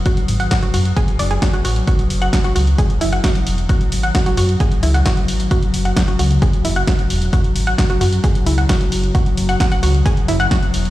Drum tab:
HH |xxoxxxoxxxoxxxox|xxoxxxoxxxoxxxox|xxoxxxoxxxoxxxox|xxoxxxoxxxoxxxox|
SD |----o-------o---|----o-------o---|----o-------o---|----o-------o---|
BD |o---o---o---o---|o---o---o---o---|o---o---o---o---|o---o---o---o---|

HH |xxoxxxoxxxoxxxox|xxoxxxoxxxoxxxox|
SD |----o-------o---|----o-------o---|
BD |o---o---o---o---|o---o---o---o---|